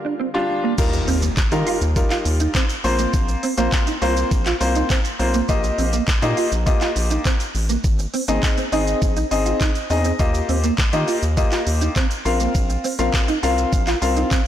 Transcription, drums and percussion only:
0.78 kick loud
0.78 crash loud
0.78 shaker medium
0.93 closed hi-hat medium
0.93 shaker medium
1.08 open hi-hat medium
1.08 shaker medium
1.22 closed hi-hat medium
1.22 shaker medium
1.37 kick loud
1.37 clap loud
1.37 shaker medium
1.52 closed hi-hat medium
1.52 shaker medium
1.67 open hi-hat medium
1.67 shaker medium
1.81 closed hi-hat medium
1.81 shaker medium
1.96 kick loud
1.96 shaker medium
2.10 clap medium
2.10 closed hi-hat medium
2.10 shaker medium
2.25 open hi-hat medium
2.25 shaker medium
2.40 closed hi-hat medium
2.40 shaker medium
2.55 kick loud
2.55 clap loud
2.55 shaker medium
2.70 closed hi-hat medium
2.70 shaker medium
2.84 open hi-hat medium
2.84 shaker soft
2.99 closed hi-hat medium
2.99 shaker medium
3.14 kick loud
3.14 shaker medium
3.28 closed hi-hat medium
3.28 shaker medium
3.43 open hi-hat medium
3.43 shaker medium
3.58 closed hi-hat medium
3.58 shaker medium
3.72 kick loud
3.72 clap loud
3.72 shaker medium
3.87 closed hi-hat medium
3.87 shaker medium
4.02 open hi-hat medium
4.02 shaker medium
4.16 closed hi-hat medium
4.16 shaker medium
4.31 kick loud
4.31 shaker medium
4.46 clap medium
4.46 closed hi-hat medium
4.46 shaker medium
4.61 open hi-hat medium
4.61 shaker medium
4.75 closed hi-hat medium
4.75 shaker medium
4.90 kick loud
4.90 clap loud
4.90 shaker medium
5.05 closed hi-hat medium
5.05 shaker medium
5.20 open hi-hat medium
5.20 shaker soft
5.20 shaker medium
5.34 closed hi-hat medium
5.34 shaker medium
5.49 kick loud
5.49 shaker medium
5.64 closed hi-hat medium
5.64 shaker medium
5.78 open hi-hat medium
5.78 shaker medium
5.93 closed hi-hat medium
5.93 shaker medium
6.08 kick loud
6.08 clap loud
6.08 shaker medium
6.22 closed hi-hat medium
6.22 shaker medium
6.37 open hi-hat medium
6.37 shaker medium
6.52 closed hi-hat medium
6.52 shaker medium
6.67 kick loud
6.67 shaker medium
6.81 clap medium
6.81 closed hi-hat medium
6.81 shaker medium
6.96 open hi-hat medium
6.96 shaker medium
7.11 closed hi-hat medium
7.11 shaker medium
7.25 kick loud
7.25 clap loud
7.25 shaker medium
7.40 closed hi-hat medium
7.40 shaker medium
7.55 open hi-hat medium
7.55 shaker medium
7.55 shaker soft
7.69 closed hi-hat medium
7.69 shaker medium
7.84 kick loud
7.84 shaker medium
7.99 closed hi-hat medium
7.99 shaker medium
8.14 open hi-hat medium
8.14 shaker medium
8.28 closed hi-hat medium
8.28 shaker medium
8.43 kick loud
8.43 clap loud
8.43 shaker medium
8.58 closed hi-hat medium
8.58 shaker medium
8.72 open hi-hat medium
8.72 shaker medium
8.87 closed hi-hat medium
8.87 shaker medium
9.02 kick loud
9.02 shaker medium
9.17 closed hi-hat medium
9.17 shaker medium
9.31 open hi-hat medium
9.31 shaker medium
9.46 closed hi-hat medium
9.46 shaker medium
9.61 kick loud
9.61 clap loud
9.61 shaker medium
9.75 closed hi-hat medium
9.75 shaker medium
9.90 open hi-hat medium
9.90 shaker soft
10.05 closed hi-hat medium
10.05 shaker medium
10.19 kick loud
10.19 shaker medium
10.34 closed hi-hat medium
10.34 shaker medium
10.49 open hi-hat medium
10.49 shaker medium
10.64 closed hi-hat medium
10.64 shaker medium
10.78 kick loud
10.78 clap loud
10.78 shaker medium
10.93 closed hi-hat medium
10.93 shaker medium
11.08 open hi-hat medium
11.08 shaker medium
11.22 closed hi-hat medium
11.22 shaker medium
11.37 kick loud
11.37 shaker medium
11.52 clap medium
11.52 closed hi-hat medium
11.52 shaker medium
11.67 open hi-hat medium
11.67 shaker medium
11.81 closed hi-hat medium
11.81 shaker medium
11.96 kick loud
11.96 clap loud
11.96 shaker medium
12.11 closed hi-hat medium
12.11 shaker medium
12.26 open hi-hat medium
12.26 shaker soft
12.26 shaker medium
12.40 closed hi-hat medium
12.40 shaker medium
12.55 kick loud
12.55 shaker medium
12.70 closed hi-hat medium
12.70 shaker medium
12.84 open hi-hat medium
12.84 shaker medium
12.99 closed hi-hat medium
12.99 shaker medium
13.14 kick loud
13.14 clap loud
13.14 shaker medium
13.28 closed hi-hat medium
13.28 shaker medium
13.43 open hi-hat medium
13.43 shaker medium
13.58 closed hi-hat medium
13.58 shaker medium
13.73 kick loud
13.73 shaker medium
13.87 clap medium
13.87 closed hi-hat medium
13.87 shaker medium
14.02 open hi-hat medium
14.02 shaker medium
14.16 closed hi-hat medium
14.16 shaker medium
14.31 kick loud
14.31 clap loud
14.31 shaker medium

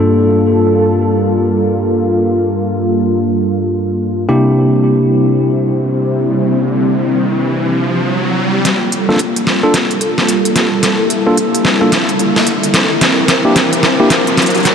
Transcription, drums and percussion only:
8.65 snare soft
8.65 closed hi-hat medium
8.92 closed hi-hat medium
9.10 snare soft
9.16 snare soft
9.16 closed hi-hat medium
9.36 closed hi-hat medium
9.47 snare medium
9.74 snare soft
9.74 closed hi-hat medium
9.91 closed hi-hat soft
10.01 closed hi-hat medium
10.18 snare soft
10.29 closed hi-hat medium
10.45 closed hi-hat medium
10.56 snare medium
10.56 closed hi-hat medium
10.83 snare medium
10.83 closed hi-hat medium
11.10 closed hi-hat medium
11.37 closed hi-hat medium
11.55 closed hi-hat medium
11.65 snare medium
11.92 snare medium
11.92 closed hi-hat medium
12.09 closed hi-hat soft
12.19 closed hi-hat medium
12.36 snare medium
12.47 closed hi-hat medium
12.63 closed hi-hat medium
12.74 snare medium
12.74 closed hi-hat medium
13.01 snare medium
13.01 closed hi-hat medium
13.28 snare medium
13.28 closed hi-hat medium
13.56 snare medium
13.56 closed hi-hat medium
13.73 closed hi-hat medium
13.83 snare medium
14.10 snare medium
14.10 closed hi-hat medium
14.27 closed hi-hat soft
14.37 snare medium
14.37 closed hi-hat medium
14.42 closed hi-hat medium
14.46 closed hi-hat soft
14.50 closed hi-hat soft
14.55 closed hi-hat soft
14.57 closed hi-hat soft
14.60 closed hi-hat soft
14.63 snare medium
14.63 closed hi-hat soft
14.65 closed hi-hat medium

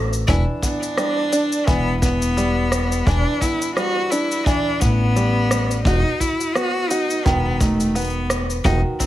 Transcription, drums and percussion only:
0.13 shaker soft
0.28 kick loud
0.28 shaker soft
0.63 kick medium
0.63 shaker medium
0.83 shaker soft
0.97 cross-stick medium
0.97 shaker soft
1.33 shaker medium
1.52 shaker soft
1.68 kick loud
1.68 shaker soft
2.02 kick medium
2.02 shaker medium
2.22 shaker soft
2.38 shaker soft
2.72 cross-stick medium
2.72 shaker medium
2.92 shaker soft
3.07 kick loud
3.07 shaker soft
3.41 kick medium
3.41 shaker medium
3.62 shaker soft
3.77 cross-stick medium
3.77 shaker soft
4.12 shaker medium
4.31 shaker soft
4.46 kick loud
4.46 shaker soft
4.81 kick medium
4.81 shaker medium
5.16 shaker soft
5.51 cross-stick medium
5.51 shaker medium
5.71 shaker soft
5.85 kick loud
5.85 shaker soft
6.20 kick medium
6.20 shaker medium
6.41 shaker soft
6.55 cross-stick medium
6.55 shaker soft
6.91 shaker medium
7.10 shaker soft
7.26 kick loud
7.26 shaker soft
7.61 kick loud
7.61 shaker medium
7.80 shaker soft
7.96 shaker soft
7.98 shaker soft
8.01 shaker soft
8.04 shaker soft
8.07 shaker soft
8.10 shaker soft
8.12 shaker soft
8.30 cross-stick medium
8.30 shaker medium
8.50 shaker soft
8.65 kick loud
8.65 shaker soft
9.00 kick medium
9.00 shaker medium

